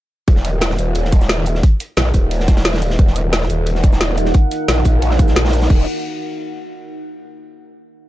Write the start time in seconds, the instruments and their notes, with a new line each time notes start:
0.28 wobble bass D#1, kick, closed hi-hat
0.36 snare
0.45 closed hi-hat, shaker
0.61 snare, closed hi-hat
0.70 snare
0.78 wobble bass D#1, closed hi-hat, open hi-hat, shaker
0.95 closed hi-hat
1.05 snare
1.12 kick, closed hi-hat, shaker
1.21 snare, shaker
1.29 snare, closed hi-hat
1.46 closed hi-hat, open hi-hat, shaker
1.55 snare
1.63 kick, closed hi-hat
1.80 closed hi-hat, shaker
1.97 wobble bass A#1, snare, closed hi-hat
2.14 wobble bass D#1, kick, closed hi-hat, open hi-hat, shaker
2.31 closed hi-hat
2.40 snare
2.48 kick, snare, closed hi-hat, shaker
2.57 snare, closed hi-hat, shaker
2.65 snare, closed hi-hat
2.73 snare, closed hi-hat
2.82 open hi-hat, shaker
2.90 snare
2.99 wobble bass D#1, ambient pad D#4 A#4 F5 F#5, kick, closed hi-hat
3.07 snare
3.16 closed hi-hat, shaker
3.33 snare, closed hi-hat
3.42 snare
3.50 wobble bass D#1, closed hi-hat, open hi-hat, shaker
3.66 closed hi-hat
3.75 snare
3.84 kick, closed hi-hat, shaker
3.92 snare, shaker
4.01 snare, closed hi-hat
4.18 closed hi-hat, open hi-hat, shaker
4.25 snare
4.34 kick, closed hi-hat
4.51 closed hi-hat, shaker
4.68 wobble bass A#1, snare, closed hi-hat
4.85 wobble bass A#1, kick, closed hi-hat, open hi-hat, shaker
5.02 closed hi-hat
5.11 snare
5.19 kick, closed hi-hat, shaker
5.28 snare, shaker
5.36 wobble bass A#1, snare, closed hi-hat
5.45 snare, closed hi-hat
5.49 snare, closed hi-hat, open hi-hat
5.53 open hi-hat, shaker
5.62 snare, shaker
5.70 wobble bass D#1, kick, crash